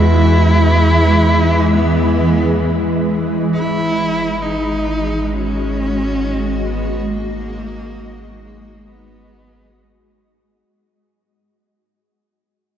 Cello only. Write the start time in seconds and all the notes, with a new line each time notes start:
Already playing: E4
1.73 B3
3.53 E4
4.42 D#4
5.33 C#4
6.67 B3
7.11 A#3
8.45 A#3
8.88 B3